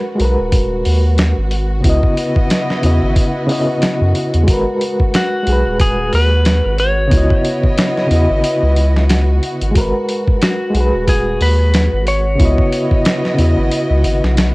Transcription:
Already playing: reed electric piano G#3 F#4 A#4 B4, violin section F#4
0.15 reed electric piano G#3 F#4
0.20 analog synth bass B1, reed electric piano A#4, open hi-hat
0.25 reed electric piano B4
0.39 analog synth bass D#1
0.52 kick, open hi-hat
0.85 analog synth bass D#2, open hi-hat
1.18 snare, open hi-hat
1.38 analog synth bass G#1
1.51 open hi-hat
1.80 reed electric piano C#3 B3, violin section E4 D#5
1.84 analog synth bass C#2, violin section B3, reed electric piano E4 F#4, kick, open hi-hat
1.90 reed electric piano D#5
2.03 kick
2.17 open hi-hat
2.36 kick
2.50 snare, open hi-hat
2.70 snare
2.82 analog synth bass E2, reed electric piano C#3 B3 E4 F#4, open hi-hat
2.86 reed electric piano D#5
3.03 analog synth bass G#1
3.16 kick, open hi-hat
3.47 reed electric piano C#3 B3 E4 F#4, open hi-hat
3.52 reed electric piano D#5
3.82 snare, open hi-hat
4.01 analog synth bass F#2
4.15 open hi-hat
4.34 analog synth bass E2, closed hi-hat
4.43 reed electric piano G#3 F#4
4.48 analog synth bass G#1, reed electric piano A#4, kick, open hi-hat
4.53 reed electric piano B4
4.81 open hi-hat
5.00 kick
5.14 electric slide guitar F#4, snare, open hi-hat
5.43 reed electric piano G#3 F#4
5.47 analog synth bass B1, reed electric piano G#4, open hi-hat
5.52 reed electric piano B4
5.66 analog synth bass D#1
5.79 electric slide guitar G#4, kick, open hi-hat
6.13 analog synth bass D#2, electric slide guitar B4, open hi-hat
6.45 snare, open hi-hat
6.65 analog synth bass G#1
6.78 electric slide guitar C#5, open hi-hat
7.08 reed electric piano C#3 B3, violin section B3 E4 F#4 D#5, open hi-hat
7.12 analog synth bass C#2, reed electric piano E4 F#4, kick
7.17 reed electric piano D#5
7.30 kick
7.45 open hi-hat
7.63 kick
7.78 snare, open hi-hat
7.97 snare
8.07 reed electric piano C#3 B3
8.11 analog synth bass E2, reed electric piano E4 F#4, open hi-hat
8.16 reed electric piano D#5
8.30 analog synth bass G#1
8.44 open hi-hat
8.63 analog synth bass C#2
8.76 open hi-hat
8.97 snare
9.10 snare, open hi-hat
9.43 open hi-hat
9.62 analog synth bass G#1, closed hi-hat
9.71 reed electric piano G#3 F#4
9.75 analog synth bass G#1, reed electric piano A#4, kick, open hi-hat
9.81 reed electric piano B4
10.09 open hi-hat
10.27 kick
10.41 electric slide guitar F#4, snare, open hi-hat
10.70 reed electric piano G#3 F#4
10.74 analog synth bass B1, reed electric piano G#4, open hi-hat
10.80 reed electric piano B4
10.94 analog synth bass D#1
11.08 electric slide guitar G#4, kick, open hi-hat
11.41 analog synth bass D#2, electric slide guitar B4, open hi-hat
11.74 snare, open hi-hat
11.93 analog synth bass G#1
12.07 electric slide guitar C#5, open hi-hat
12.35 reed electric piano C#3 B3, violin section D#5
12.39 analog synth bass C#2, violin section B3 E4 F#4, reed electric piano E4 F#4, kick, open hi-hat
12.45 reed electric piano D#5
12.58 kick
12.73 open hi-hat
12.91 kick
13.05 snare, open hi-hat
13.25 snare
13.34 reed electric piano C#3 B3
13.38 analog synth bass E2, reed electric piano E4 F#4, open hi-hat
13.44 reed electric piano D#5
13.58 analog synth bass G#1
13.71 open hi-hat
13.90 analog synth bass C#2
14.04 analog synth bass G#1, open hi-hat
14.24 analog synth bass B1, snare
14.37 snare, open hi-hat

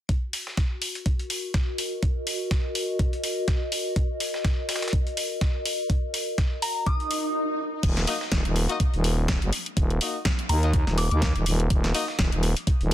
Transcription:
0.09 ambient pad F#4, kick, closed hi-hat
0.33 open hi-hat
0.47 snare
0.57 kick, snare, closed hi-hat
0.72 ambient pad A#4
0.82 closed hi-hat, open hi-hat
0.95 closed hi-hat
1.06 kick, closed hi-hat
1.19 closed hi-hat
1.30 closed hi-hat, open hi-hat
1.37 ambient pad D#5
1.54 kick, snare, closed hi-hat
1.78 closed hi-hat, open hi-hat
2.03 kick, closed hi-hat
2.27 closed hi-hat, open hi-hat
2.51 kick, snare, closed hi-hat
2.75 closed hi-hat, open hi-hat
2.99 kick, closed hi-hat
3.13 closed hi-hat
3.24 closed hi-hat, open hi-hat
3.48 kick, snare, closed hi-hat
3.72 closed hi-hat, open hi-hat
3.96 kick, closed hi-hat
4.20 open hi-hat
4.34 snare
4.45 kick, snare, closed hi-hat
4.69 snare, closed hi-hat, open hi-hat
4.76 snare, closed hi-hat
4.82 snare, closed hi-hat
4.88 snare, closed hi-hat
4.93 kick, closed hi-hat
5.07 closed hi-hat
5.17 closed hi-hat, open hi-hat
5.41 kick, snare, closed hi-hat
5.65 closed hi-hat, open hi-hat
5.90 kick, closed hi-hat
6.14 closed hi-hat, open hi-hat
6.38 kick, snare, closed hi-hat
6.62 synth bell A#5, closed hi-hat, open hi-hat
6.86 synth bell D#6, kick, closed hi-hat, swell
7.00 closed hi-hat
7.11 closed hi-hat, open hi-hat
7.83 fm bass D#1, kick, closed hi-hat, crash
7.97 snare, closed hi-hat
8.07 horn section A#3 D#4 F#4 D#5, open hi-hat
8.21 snare
8.32 fm bass D#1, kick, snare, closed hi-hat
8.45 fm bass D#1, closed hi-hat
8.56 closed hi-hat, open hi-hat
8.69 horn section A#3 D#4 F#4 D#5, closed hi-hat
8.80 kick, closed hi-hat
8.94 fm bass D#1, closed hi-hat
9.04 closed hi-hat, open hi-hat
9.28 kick, snare, closed hi-hat
9.42 fm bass F#1, closed hi-hat
9.53 closed hi-hat, open hi-hat
9.66 closed hi-hat
9.77 fm bass D#1, kick, closed hi-hat
9.90 closed hi-hat
10.01 horn section A#3 D#4 F#4 D#5, closed hi-hat, open hi-hat
10.25 kick, snare, closed hi-hat
10.39 closed hi-hat
10.49 fm bass D#2, synth bell A#5, closed hi-hat, open hi-hat
10.63 horn section A#3 D#4 F#4 D#5, closed hi-hat
10.74 kick, closed hi-hat
10.87 fm bass D#1, snare, closed hi-hat
10.98 synth bell D6, closed hi-hat, open hi-hat
11.11 fm bass D#2, synth bell D6, closed hi-hat
11.22 kick, snare, closed hi-hat
11.36 fm bass D#1, closed hi-hat
11.46 fm bass D#1, closed hi-hat, open hi-hat
11.60 closed hi-hat
11.70 fm bass D#1, kick, closed hi-hat
11.84 snare, closed hi-hat
11.94 horn section A#3 D#4 F#4 D#5, open hi-hat
12.08 snare
12.19 fm bass D#1, kick, snare, closed hi-hat
12.32 fm bass D#1, closed hi-hat
12.43 closed hi-hat, open hi-hat
12.57 closed hi-hat
12.67 kick, closed hi-hat
12.81 fm bass D#1, closed hi-hat

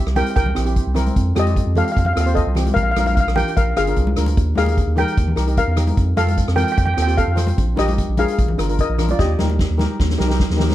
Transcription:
Already playing: steel pan G4 E5
0.06 sub bass C2, cross-stick
0.16 steel pan C4 E4 G4 A#4 G5, closed hi-hat, high conga, low conga
0.26 closed hi-hat
0.36 sub bass C2, steel pan A#4 G5, kick, closed hi-hat
0.46 low conga
0.55 sub bass A#1, steel pan C4 E4 G4, cross-stick, closed hi-hat
0.65 steel pan C4 E4 G4, closed hi-hat
0.76 kick, closed hi-hat
0.87 sub bass C2
0.94 steel pan C4 E4 A#4, cross-stick, closed hi-hat, low conga
1.06 closed hi-hat, high conga
1.16 sub bass F2, kick, closed hi-hat
1.35 sub bass F2, steel pan C4 F4 G4 A4, cross-stick, closed hi-hat, high conga
1.39 steel pan D#5
1.47 closed hi-hat, high conga
1.56 kick, closed hi-hat
1.66 sub bass F2
1.76 steel pan C4 F4 G4 A4 F5, closed hi-hat, high conga, low conga
1.85 steel pan F5, closed hi-hat
1.92 steel pan F5
1.97 sub bass F2, steel pan F5, kick, closed hi-hat
2.05 steel pan F5, low conga
2.13 sub bass D#2, steel pan C4 F4 A4 F5, cross-stick, closed hi-hat
2.21 steel pan F5
2.26 steel pan C4 F4 C5, closed hi-hat
2.34 steel pan A4 D#5, kick, closed hi-hat
2.46 sub bass C2
2.55 steel pan C4 F4 G4, cross-stick, closed hi-hat, low conga
2.67 closed hi-hat, high conga
2.74 sub bass A#1, steel pan A#4 F5, kick, closed hi-hat
2.83 steel pan F5
2.91 steel pan F5
2.96 sub bass A#1, steel pan D4 F4 A#4 F5, cross-stick, closed hi-hat, high conga
3.06 steel pan F5, closed hi-hat, high conga
3.15 steel pan F5, kick, closed hi-hat
3.20 steel pan F5
3.27 sub bass A#1, cross-stick
3.35 steel pan D4 F4 G4 A#4 G5, closed hi-hat, high conga, low conga
3.48 closed hi-hat
3.57 sub bass A#1, steel pan A#4 F5, kick, closed hi-hat
3.76 sub bass G1, steel pan D4 F4 G#4 F5, cross-stick, closed hi-hat
3.87 steel pan D4 F4 A#4, closed hi-hat
3.96 sub bass C2, kick, closed hi-hat
4.07 high conga
4.16 sub bass D2, steel pan D4 F4 A#4, cross-stick, closed hi-hat
4.26 closed hi-hat, high conga
4.37 sub bass D#2, kick, closed hi-hat
4.55 sub bass D#2, steel pan D#4 G4 G#4 A#4 F5, cross-stick, closed hi-hat, high conga
4.66 closed hi-hat, high conga
4.77 kick, closed hi-hat
4.87 sub bass D#2
4.96 steel pan D#4 G4 A#4 G5, closed hi-hat, high conga, low conga
5.08 closed hi-hat
5.17 sub bass D#2, kick, closed hi-hat
5.28 low conga
5.35 sub bass C2, steel pan D#4 G4 A#4, cross-stick, closed hi-hat
5.47 steel pan D#4 G4 A#4, closed hi-hat
5.57 steel pan A#4 F5, kick, closed hi-hat
5.67 sub bass E2
5.76 steel pan D#4 G4 A#4, cross-stick, closed hi-hat, low conga
5.87 closed hi-hat, high conga
5.97 sub bass F2, kick, closed hi-hat
6.16 sub bass F2, steel pan C4 F4 A4 F5, cross-stick, closed hi-hat, high conga
6.27 closed hi-hat, high conga
6.37 kick, closed hi-hat
6.48 sub bass F2, cross-stick
6.56 steel pan C4 F4 A4 A#4 G5, closed hi-hat, high conga, low conga
6.64 steel pan G5, closed hi-hat
6.72 steel pan G5
6.77 sub bass F2, steel pan G5, kick, closed hi-hat
6.86 steel pan G5, low conga
6.94 sub bass D#2, steel pan C4 F4 A4 G5, cross-stick, closed hi-hat
7.02 steel pan G5
7.07 steel pan C4 F4 G4, closed hi-hat
7.17 steel pan A4 F5, kick, closed hi-hat
7.27 sub bass F2
7.35 steel pan C4 F4 C5, cross-stick, closed hi-hat, low conga
7.47 closed hi-hat, high conga
7.58 sub bass A#1, kick, closed hi-hat
7.76 sub bass A#1, steel pan D4 F4 G4 A#4 D#5, cross-stick, closed hi-hat, high conga
7.88 closed hi-hat, high conga
7.98 kick, closed hi-hat
8.09 sub bass A#1
8.17 steel pan D4 F4 G#4 A#4 F5, closed hi-hat, high conga, low conga
8.28 closed hi-hat
8.38 sub bass A#1, kick, closed hi-hat
8.48 low conga
8.58 sub bass G1, steel pan D4 F4 A#4, cross-stick, closed hi-hat
8.69 steel pan D4 F4 A#4, closed hi-hat
8.78 steel pan A#4 D#5, kick, closed hi-hat
8.89 sub bass A#1
8.98 steel pan D4 F4 A#4, cross-stick, closed hi-hat, low conga
9.09 steel pan F4 D5, closed hi-hat, high conga
9.19 sub bass D#2, steel pan G4 D#5, kick, snare
9.38 sub bass D#2, steel pan D#4 G4 A#4, snare, high conga
9.50 high conga
9.59 kick, snare
9.70 sub bass D#2
9.78 steel pan D#4 G4 A#4, snare, high conga, low conga
9.99 sub bass D#2, kick, snare
10.10 snare
10.18 sub bass C2, steel pan D#4 G4 A#4, snare
10.27 steel pan D#4 G4 A#4, snare
10.40 kick, snare
10.50 sub bass D#2, snare
10.57 steel pan D#4 G4 A#4, snare, low conga
10.70 snare, high conga

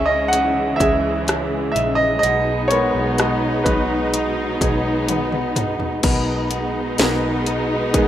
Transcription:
Already playing: fingered electric bass C#2, string section C#3 G#3 C#4, nylon-string guitar C#3 C#4 D#4 G#4, grand piano D#3 E3 C#4 E5
0.06 grand piano D#5
0.28 nylon-string guitar D#4, grand piano F#5
0.33 string section E3, closed hi-hat
0.76 nylon-string guitar G#4, grand piano E5
0.80 fingered electric bass C#2, kick, closed hi-hat
1.27 nylon-string guitar C#4, cross-stick, closed hi-hat
1.72 nylon-string guitar D#4, grand piano E5
1.76 fingered electric bass A#1, closed hi-hat
1.95 grand piano D#5
2.19 fingered electric bass B1, nylon-string guitar B2, string section B2 B3, grand piano D#5
2.23 string section D#4, closed hi-hat
2.68 grand piano G#3 B3 A#4 C#5, nylon-string guitar B3, closed hi-hat
2.95 fingered electric bass B1
3.18 nylon-string guitar D#4, cross-stick, closed hi-hat
3.64 fingered electric bass B1, nylon-string guitar B3, grand piano B4, kick, closed hi-hat
4.13 string section B3, nylon-string guitar D#4, closed hi-hat
4.61 fingered electric bass B1, nylon-string guitar G#4, kick, closed hi-hat
5.08 nylon-string guitar B3, closed hi-hat, high tom
5.32 mid tom
5.55 nylon-string guitar D#4, closed hi-hat, mid tom
5.80 floor tom
6.03 fingered electric bass B1, nylon-string guitar B2 A#4, string section B2 G#3 B3 D#4, grand piano B3, kick, closed hi-hat, crash
6.50 nylon-string guitar B3, closed hi-hat
6.98 fingered electric bass B1, grand piano G#4 A#4 B4, nylon-string guitar A#4, snare, closed hi-hat
7.46 nylon-string guitar D#4, closed hi-hat
7.93 nylon-string guitar G#3, grand piano G#4 A#4 B4, kick, closed hi-hat

